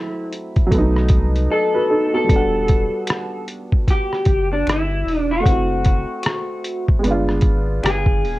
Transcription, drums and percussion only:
0.32 closed hi-hat
0.56 kick, closed hi-hat
0.71 kick, closed hi-hat
0.96 cross-stick
1.09 kick, closed hi-hat
1.36 closed hi-hat
2.29 kick, closed hi-hat
2.68 kick, closed hi-hat
3.07 finger snap, cross-stick, closed hi-hat
3.48 closed hi-hat
3.72 kick
3.88 kick, closed hi-hat
4.13 cross-stick
4.25 kick, closed hi-hat
4.67 finger snap, cross-stick, closed hi-hat
5.08 open hi-hat
5.46 kick, closed hi-hat
5.85 kick, closed hi-hat
6.23 finger snap, cross-stick, closed hi-hat
6.64 closed hi-hat
6.88 kick
7.04 closed hi-hat
7.29 cross-stick
7.41 kick, closed hi-hat
7.83 finger snap, cross-stick, closed hi-hat
8.06 kick
8.25 open hi-hat

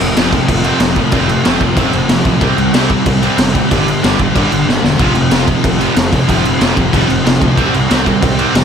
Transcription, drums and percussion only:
0.01 crash
0.17 snare, crash
0.33 kick, crash
0.48 kick, crash
0.64 crash
0.80 snare, crash
0.96 kick, crash
1.12 kick, crash
1.29 crash
1.45 snare, crash
1.61 kick, crash
1.77 kick, crash
1.93 crash
2.09 snare, crash
2.25 kick, crash
2.41 kick, crash
2.58 crash
2.74 snare, crash
2.90 kick, crash
3.06 kick, crash
3.23 crash
3.38 snare, crash
3.55 kick, crash
3.71 kick, crash
3.88 crash
4.04 snare, crash
4.19 kick, crash
4.36 kick, crash
4.52 crash
4.69 snare
4.84 snare
4.99 kick, crash
5.15 crash
5.31 snare, crash
5.48 kick, crash
5.64 kick, crash
5.81 crash
5.96 snare, crash
6.13 kick, crash
6.29 kick, crash
6.45 crash
6.61 snare, crash
6.77 kick, crash
6.93 kick, crash
7.10 crash
7.26 snare, crash
7.42 kick, crash
7.58 kick, crash
7.74 crash
7.91 snare, crash
8.06 kick, crash
8.23 kick, crash
8.39 crash
8.55 snare, crash

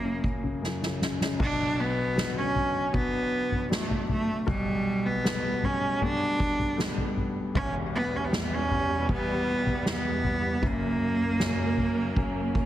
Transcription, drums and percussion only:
0.24 kick
0.44 floor tom
0.64 snare
0.83 snare
1.02 snare
1.21 snare
1.40 kick, floor tom, crash
2.18 snare
2.56 floor tom
2.94 kick, floor tom
3.52 floor tom
3.72 snare
3.91 floor tom
4.09 floor tom
4.47 kick, floor tom
5.25 snare
5.63 floor tom
6.01 floor tom
6.40 kick
6.59 floor tom
6.79 snare
6.97 floor tom
7.17 floor tom
7.55 kick, floor tom
8.33 snare
8.71 floor tom
9.09 kick, floor tom
9.66 floor tom
9.86 snare
10.24 floor tom
10.62 kick, floor tom
11.40 snare
11.78 floor tom
12.16 kick, floor tom
12.55 kick

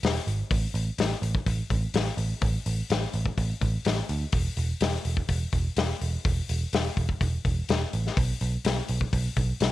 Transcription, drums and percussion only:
0.03 snare, open hi-hat
0.28 open hi-hat
0.51 kick, open hi-hat
0.75 open hi-hat
0.98 snare, open hi-hat
1.23 open hi-hat
1.35 kick
1.46 kick, open hi-hat
1.70 kick, open hi-hat
1.94 snare, open hi-hat
2.18 open hi-hat
2.42 kick, open hi-hat
2.66 open hi-hat
2.90 snare, open hi-hat
3.13 open hi-hat
3.26 kick
3.38 kick, open hi-hat
3.61 kick, open hi-hat
3.85 snare, open hi-hat
4.09 open hi-hat
4.32 kick, open hi-hat
4.57 open hi-hat
4.80 snare, open hi-hat
5.05 open hi-hat
5.17 kick
5.29 kick, open hi-hat
5.53 kick, open hi-hat
5.76 snare, open hi-hat
6.01 open hi-hat
6.25 kick, open hi-hat
6.49 open hi-hat
6.73 snare, open hi-hat
6.97 kick, open hi-hat
7.09 kick
7.21 kick, open hi-hat
7.45 kick, open hi-hat
7.69 snare, open hi-hat
7.93 open hi-hat
8.07 snare
8.17 kick, open hi-hat
8.41 open hi-hat
8.65 snare, open hi-hat
8.88 open hi-hat
9.01 kick
9.13 kick, open hi-hat
9.36 kick, open hi-hat
9.60 snare, open hi-hat

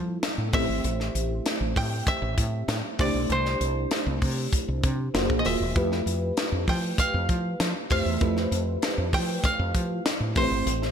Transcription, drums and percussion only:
0.23 snare, closed hi-hat
0.53 kick, snare, open hi-hat
0.84 closed hi-hat
1.00 snare
1.15 closed hi-hat
1.46 snare, closed hi-hat
1.76 kick, open hi-hat
2.07 kick, closed hi-hat
2.38 kick, closed hi-hat
2.69 snare, closed hi-hat
2.99 kick, snare, open hi-hat
3.30 closed hi-hat
3.46 snare
3.61 closed hi-hat
3.91 snare, closed hi-hat
4.22 kick, open hi-hat
4.53 kick, closed hi-hat
4.83 kick, closed hi-hat
5.15 snare, closed hi-hat
5.30 kick
5.45 open hi-hat
5.76 kick, closed hi-hat
5.92 snare
6.07 closed hi-hat
6.37 snare, closed hi-hat
6.68 kick, open hi-hat
6.98 kick, closed hi-hat
7.29 kick, closed hi-hat
7.60 snare, closed hi-hat
7.90 kick, snare, open hi-hat
8.21 kick, closed hi-hat
8.37 snare
8.52 closed hi-hat
8.82 snare, closed hi-hat
9.13 kick, open hi-hat
9.44 kick, closed hi-hat
9.75 kick, closed hi-hat
10.06 snare, closed hi-hat
10.36 kick, snare, open hi-hat
10.67 closed hi-hat
10.82 snare

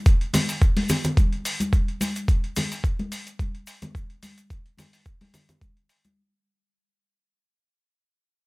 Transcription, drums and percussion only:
0.06 kick, closed hi-hat, cabasa
0.21 closed hi-hat
0.34 open hi-hat, high conga, low conga, cabasa
0.49 open hi-hat, cabasa
0.62 kick, closed hi-hat, cabasa
0.77 open hi-hat, high conga
0.89 open hi-hat, low conga, cabasa
1.04 closed hi-hat, low conga, cabasa
1.17 kick, closed hi-hat, high conga, cabasa
1.32 closed hi-hat
1.45 open hi-hat, cabasa
1.60 closed hi-hat, high conga, cabasa
1.73 kick, closed hi-hat, cabasa
1.88 closed hi-hat
2.01 open hi-hat, high conga, cabasa
2.16 closed hi-hat, cabasa
2.28 kick, closed hi-hat, cabasa
2.44 closed hi-hat
2.56 open hi-hat, high conga, low conga, cabasa
2.72 open hi-hat, cabasa
2.84 kick, closed hi-hat, cabasa
2.99 closed hi-hat, high conga
3.12 open hi-hat, cabasa
3.27 closed hi-hat, cabasa
3.39 kick, closed hi-hat, high conga, cabasa
3.55 closed hi-hat
3.67 open hi-hat, cabasa
3.82 closed hi-hat, high conga, low conga, cabasa
3.95 kick, closed hi-hat, cabasa
4.10 closed hi-hat
4.23 open hi-hat, high conga, cabasa
4.38 closed hi-hat, cabasa
4.50 kick, closed hi-hat, cabasa
4.66 closed hi-hat
4.78 open hi-hat, high conga, low conga, cabasa
4.93 open hi-hat, cabasa
5.05 kick, closed hi-hat, cabasa
5.21 open hi-hat, high conga
5.34 open hi-hat, low conga, cabasa
5.49 closed hi-hat, low conga, cabasa
5.61 kick, closed hi-hat, high conga, cabasa
5.77 closed hi-hat
5.89 open hi-hat, cabasa
6.05 closed hi-hat, high conga, cabasa

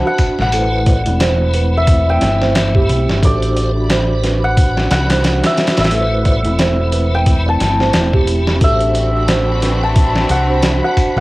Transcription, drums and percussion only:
0.18 kick, open hi-hat
0.39 snare
0.52 open hi-hat
0.86 kick, open hi-hat
1.06 closed hi-hat
1.20 snare, open hi-hat
1.54 open hi-hat
1.87 kick, open hi-hat
2.21 snare, open hi-hat
2.42 snare
2.55 snare, open hi-hat
2.75 kick
2.89 open hi-hat
3.09 snare
3.23 kick, open hi-hat
3.42 closed hi-hat
3.57 open hi-hat
3.90 snare, open hi-hat
4.24 snare, open hi-hat
4.57 kick, open hi-hat
4.77 snare
4.91 snare, open hi-hat
5.10 snare, open hi-hat
5.24 snare, open hi-hat
5.44 snare, open hi-hat
5.57 snare, open hi-hat
5.67 snare, open hi-hat
5.77 snare, open hi-hat
5.84 snare, open hi-hat
5.91 open hi-hat
6.25 kick, open hi-hat
6.44 closed hi-hat
6.59 snare, open hi-hat
6.92 open hi-hat
7.26 kick, open hi-hat
7.60 snare, open hi-hat
7.80 snare
7.93 snare, open hi-hat
8.13 kick
8.27 open hi-hat
8.47 snare
8.61 kick, open hi-hat
8.81 closed hi-hat
8.95 open hi-hat
9.28 snare, open hi-hat
9.62 snare, open hi-hat
9.96 kick, open hi-hat
10.16 snare
10.29 open hi-hat
10.63 snare, open hi-hat
10.97 kick, open hi-hat
11.17 snare

